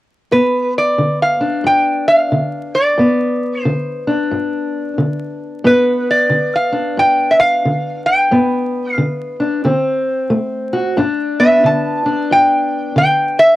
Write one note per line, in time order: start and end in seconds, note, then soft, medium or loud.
0.31 0.93 G2 medium
0.31 2.99 B3 medium
0.31 0.73 B4 medium
0.78 1.18 D5 medium
0.98 1.60 D3 medium
1.22 1.66 F5 medium
1.41 4.07 D4 medium
1.64 2.26 G2 medium
1.64 2.08 G5 medium
2.08 2.76 F5 medium
2.32 2.93 D3 medium
2.75 3.62 D5 medium
2.98 3.59 G2 medium
2.98 5.64 B3 medium
3.62 4.27 D3 medium
3.62 4.03 C5 medium
4.07 6.72 D4 soft
4.31 4.93 G2 medium
4.98 5.60 D3 medium
5.64 6.26 G2 medium
5.64 8.28 B3 medium
5.64 6.07 B4 medium
6.10 6.56 D5 medium
6.29 6.92 D3 medium
6.55 6.99 F5 medium
6.72 9.39 D4 medium
6.97 7.59 G2 medium
6.97 7.32 G5 medium
7.31 7.39 E5 medium
7.39 8.02 F5 medium
7.65 8.27 D3 medium
8.06 8.94 G5 medium
8.31 8.93 G2 medium
8.31 9.62 B3 medium
8.94 9.60 D3 medium
8.94 9.35 F5 medium
9.40 9.62 D4 soft
9.65 10.26 D3 medium
9.65 10.95 C4 medium
10.30 10.92 A3 medium
10.73 10.95 F#4 medium
10.97 11.59 G2 medium
10.97 12.05 D4 medium
11.40 13.56 B3 medium
11.40 11.64 E5 medium
11.64 12.25 D3 medium
11.64 12.29 A5 medium
12.06 13.56 D4 medium
12.31 12.92 G2 medium
12.31 12.96 G5 medium
12.96 13.56 D3 medium
12.96 13.37 G5 medium
13.39 13.56 E5 medium